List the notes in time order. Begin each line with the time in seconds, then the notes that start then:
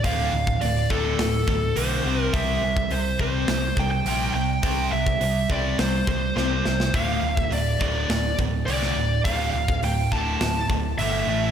0.04 D1 D2 A2 D3 F5, kick, open hi-hat
0.33 D1 D2 A2
0.47 kick
0.61 D1 D2 A2 D5, open hi-hat
0.90 D1 D2 A2 D3 A4, kick
1.19 D1 D2 A2, snare, open hi-hat
1.47 D1 D2 A2, kick
1.75 B1 D2 A2 D3 C5, open hi-hat
2.05 C2 C3 G3 C4
2.23 A#4
2.33 C2 C3 G3 C4 E5, kick, open hi-hat
2.62 C2 C3 G3
2.77 kick
2.90 C2 C3 G3 C5, open hi-hat
3.19 C2 C3 G3 C4 C5, kick
3.47 C2 C3 G3, snare, open hi-hat
3.77 C2 C3 G3 G5, kick
3.91 G5
4.05 A#1 C3 G3 C4, open hi-hat
4.34 C2 C3 G3 G5
4.63 C2 C3 G3 C4, kick, open hi-hat
4.92 C2 C3 G3 E5
5.07 kick
5.21 C2 C3 G3, open hi-hat
5.50 C2 C3 G3 C4 D5, kick
5.78 C2 C3 G3 C5, snare, open hi-hat
6.07 C2 C3 G3 C5, kick
6.36 C2 C3 G3 C4 C5, snare
6.65 C2 C3 G3, snare
6.80 snare
6.94 D1 D2 A2 D3 F5, kick, open hi-hat
7.23 D1 D2 A2
7.37 E5, kick
7.52 D1 D2 A2 D5, open hi-hat
7.81 D1 D2 A2 D3 D5, kick
8.09 D1 D2 A2, snare, open hi-hat
8.38 D1 D2 A2, kick
8.66 C2 D2 A2 D3 D5, open hi-hat
8.82 snare
8.96 D1 D2 A2
9.24 D1 D2 A2 D3 F5, kick, open hi-hat
9.54 D1 D2 A2
9.68 kick
9.83 D1 D2 A2 G5, open hi-hat
10.12 D1 D2 A2 D3 A5, kick
10.41 D1 D2 A2, snare, open hi-hat
10.70 D1 D2 A2, kick
10.98 G1 D2 A2 D3 E5, open hi-hat
11.27 A1 A2 E3 A3